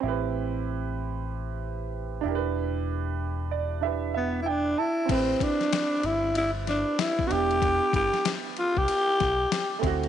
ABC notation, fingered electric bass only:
X:1
M:4/4
L:1/16
Q:"Swing 16ths" 1/4=95
K:Am
V:1 name="Fingered electric bass" clef=bass
A,,,12- A,,,2 E,,,2- | E,,,12- E,,,2 z2 | A,,,2 z4 G,,,4- G,,, z3 E,,,2- | E,,,2 G,,, z4 C,, z2 B,,,2 z2 D,,2 |]